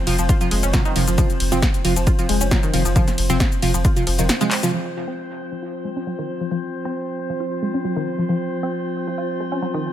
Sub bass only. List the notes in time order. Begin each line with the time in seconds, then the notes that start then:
0.07 F1
0.19 F1
0.51 F1
0.63 F1
0.96 F1
1.08 F1
1.40 F1
1.52 F1
1.85 F1
1.96 F1
2.29 F1
2.41 F1
2.73 F1
2.85 F1
3.18 F1
3.30 F1
3.62 F1
3.74 F1
4.07 F1
4.19 F1